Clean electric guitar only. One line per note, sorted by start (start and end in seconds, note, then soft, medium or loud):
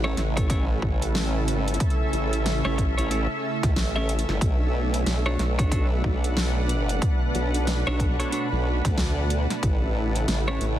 0.04 0.21 C#4 medium
0.04 0.21 E4 medium
0.04 0.21 A4 medium
0.04 0.21 C#5 loud
0.37 0.48 C#4 medium
0.37 0.48 E4 medium
0.37 0.48 A4 medium
0.37 0.48 C#5 medium
0.49 0.65 C#4 medium
0.49 0.65 E4 medium
0.49 0.64 A4 medium
0.49 0.64 C#5 medium
2.65 2.82 C#4 medium
2.65 2.82 E4 medium
2.65 2.82 A4 medium
2.65 2.82 C#5 loud
2.98 3.09 C#4 medium
2.98 3.09 E4 medium
2.98 3.09 A4 medium
2.98 3.09 C#5 medium
3.10 3.26 C#4 medium
3.10 3.25 E4 medium
3.10 3.26 A4 medium
3.10 3.26 C#5 medium
3.96 4.12 C#4 medium
3.96 4.12 E4 medium
3.96 4.12 A4 medium
3.96 4.12 E5 medium
5.26 5.43 D4 medium
5.26 5.43 F#4 medium
5.26 5.43 A4 medium
5.26 5.43 C#5 loud
5.59 5.70 D4 medium
5.59 5.70 F#4 medium
5.59 5.70 A4 medium
5.59 5.70 C#5 medium
5.71 5.86 D4 medium
5.71 5.86 F#4 medium
5.71 5.86 A4 medium
5.71 5.86 C#5 medium
7.87 8.04 D4 medium
7.87 8.04 F#4 medium
7.87 8.04 A4 medium
7.87 8.04 C#5 loud
8.19 8.31 D4 medium
8.19 8.31 F#4 medium
8.19 8.31 A4 medium
8.19 8.31 C#5 medium
8.32 8.47 D4 medium
8.32 8.47 F#4 medium
8.32 8.47 A4 medium
8.32 8.47 C#5 medium
10.48 10.65 C#4 medium
10.48 10.65 E4 medium
10.48 10.65 A4 medium
10.48 10.65 C#5 loud